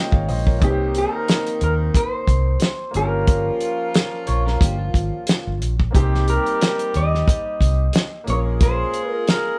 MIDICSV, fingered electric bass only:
0, 0, Header, 1, 2, 480
1, 0, Start_track
1, 0, Tempo, 665853
1, 444, Time_signature, 4, 2, 24, 8
1, 6910, End_track
2, 0, Start_track
2, 0, Title_t, "Fingered electric bass"
2, 0, Program_c, 0, 33
2, 89, Note_on_c, 0, 32, 96
2, 213, Note_off_c, 0, 32, 0
2, 213, Note_on_c, 0, 34, 77
2, 446, Note_off_c, 0, 34, 0
2, 446, Note_on_c, 0, 36, 101
2, 748, Note_off_c, 0, 36, 0
2, 1164, Note_on_c, 0, 39, 80
2, 1361, Note_off_c, 0, 39, 0
2, 1643, Note_on_c, 0, 36, 82
2, 1840, Note_off_c, 0, 36, 0
2, 2127, Note_on_c, 0, 31, 96
2, 2519, Note_off_c, 0, 31, 0
2, 3089, Note_on_c, 0, 34, 82
2, 3284, Note_off_c, 0, 34, 0
2, 3323, Note_on_c, 0, 31, 102
2, 3520, Note_off_c, 0, 31, 0
2, 3564, Note_on_c, 0, 32, 103
2, 3670, Note_off_c, 0, 32, 0
2, 3944, Note_on_c, 0, 31, 93
2, 4055, Note_off_c, 0, 31, 0
2, 4055, Note_on_c, 0, 34, 83
2, 4247, Note_off_c, 0, 34, 0
2, 4287, Note_on_c, 0, 36, 108
2, 4589, Note_off_c, 0, 36, 0
2, 5014, Note_on_c, 0, 39, 81
2, 5207, Note_off_c, 0, 39, 0
2, 5486, Note_on_c, 0, 36, 100
2, 5682, Note_off_c, 0, 36, 0
2, 5969, Note_on_c, 0, 34, 92
2, 6361, Note_off_c, 0, 34, 0
2, 6910, End_track
0, 0, End_of_file